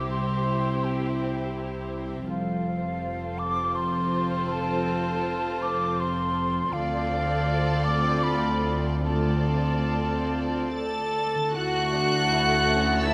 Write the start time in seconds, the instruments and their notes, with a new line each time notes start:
Already playing: double bass section C2, cello section C3, harp G3 C4 E4 G4 C5 E5, viola section C4 E4, violin section G4 C5
0.09 harp C3, flute C6
0.35 harp C4
0.59 harp G4
0.83 harp C5, flute G5
1.08 harp E5
1.31 harp G4
1.55 harp E4
1.79 harp C4
2.04 harp G3
2.28 double bass section F1, cello section F2, harp F3, viola section C4 F4, violin section A4 C5, flute F5
2.52 harp F4
2.77 harp C5
3.01 harp F5
3.25 harp A5
3.39 flute D6
3.50 harp C5
3.75 harp A4, flute C6
4.01 harp F4
4.26 harp C4
4.51 harp F3, flute A5
4.76 harp F4
5.01 harp C5
5.25 harp F5
5.50 harp A5
5.62 flute D6
5.75 harp C5
5.99 harp A4, flute C6
6.24 harp F4
6.48 harp C4
6.70 cello section D2, double bass section D2, harp D3, viola section C4 F4, violin section A4 D5, flute F5
6.96 harp C4
7.20 harp A4
7.46 harp C5
7.71 harp F5
7.84 flute D6
7.97 harp A4
8.23 harp F4, flute B5
8.49 harp C4
8.77 harp A3
9.03 harp D3, viola section C4 F4, violin section A4 D5, flute A5
9.33 harp C4
9.60 harp A4
9.87 harp C5
10.15 harp F5
10.44 harp A4
10.72 harp F4, viola section A4, flute A5, violin section A6
10.99 harp C4
11.27 harp A3
11.35 harp D3
11.44 harp E4
11.48 harp A4
11.53 double bass section D2, cello section D2, french horn section A3 E4, violin section F#4 A4 F#6, viola section F#4, flute F#5
11.93 violin section D4
12.27 oboe F#5
12.31 violin section E4
12.70 violin section C#4
13.04 violin section D4 E6, flute E5, oboe A5
13.08 viola section E4